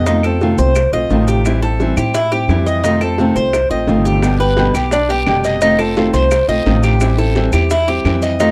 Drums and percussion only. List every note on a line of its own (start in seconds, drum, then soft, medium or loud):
0.06 high bongo medium
0.06 maracas medium
0.23 high bongo soft
0.23 claves medium
0.23 maracas soft
0.41 high bongo medium
0.41 maracas soft
0.58 high bongo soft
0.58 maracas medium
0.75 high bongo medium
0.75 claves medium
0.75 maracas medium
0.93 high bongo soft
0.93 maracas soft
1.10 high bongo soft
1.10 low bongo medium
1.10 maracas soft
1.28 maracas medium
1.45 high bongo medium
1.45 claves medium
1.45 maracas loud
1.63 high bongo soft
1.63 maracas soft
1.80 high bongo medium
1.80 maracas soft
1.97 high bongo soft
1.97 claves medium
1.97 maracas medium
2.14 high bongo medium
2.14 maracas medium
2.32 high bongo soft
2.32 maracas soft
2.49 high bongo soft
2.49 low bongo medium
2.49 claves medium
2.49 maracas soft
2.67 maracas medium
2.84 high bongo medium
2.84 maracas medium
3.01 high bongo soft
3.01 claves medium
3.01 maracas soft
3.18 high bongo medium
3.18 maracas soft
3.36 high bongo soft
3.36 maracas medium
3.53 high bongo medium
3.53 claves medium
3.53 maracas medium
3.71 high bongo soft
3.71 maracas soft
3.87 high bongo soft
3.87 low bongo medium
3.87 maracas soft
4.06 maracas medium
4.22 high bongo medium
4.22 long guiro medium
4.22 claves medium
4.22 maracas medium
4.40 high bongo soft
4.40 maracas soft
4.57 high bongo medium
4.57 short guiro medium
4.57 maracas soft
4.75 high bongo soft
4.75 short guiro medium
4.75 claves medium
4.75 maracas medium
4.91 high bongo medium
4.91 long guiro medium
4.91 maracas loud
5.09 high bongo soft
5.09 maracas soft
5.26 high bongo soft
5.26 low bongo medium
5.26 short guiro medium
5.26 claves medium
5.26 maracas soft
5.44 short guiro medium
5.44 maracas medium
5.61 high bongo medium
5.61 long guiro medium
5.61 maracas medium
5.79 high bongo soft
5.79 claves medium
5.79 maracas soft
5.96 high bongo medium
5.96 short guiro medium
5.96 maracas soft
6.14 high bongo soft
6.14 short guiro medium
6.14 maracas medium
6.31 high bongo medium
6.31 long guiro medium
6.31 claves medium
6.31 maracas medium
6.49 high bongo soft
6.49 maracas soft
6.66 high bongo soft
6.66 low bongo medium
6.66 short guiro medium
6.66 maracas soft
6.83 short guiro medium
6.83 maracas medium
7.00 high bongo medium
7.00 long guiro medium
7.00 claves medium
7.00 maracas medium
7.18 high bongo soft
7.18 maracas soft
7.35 high bongo medium
7.35 short guiro medium
7.35 maracas soft
7.52 high bongo soft
7.52 short guiro medium
7.52 claves medium
7.52 maracas medium
7.70 high bongo medium
7.70 long guiro medium
7.70 maracas loud
7.88 high bongo soft
7.88 maracas soft
8.05 high bongo soft
8.05 low bongo medium
8.05 short guiro medium
8.05 claves medium
8.05 maracas soft
8.22 short guiro medium
8.22 maracas medium
8.40 high bongo medium
8.40 long guiro medium
8.40 maracas medium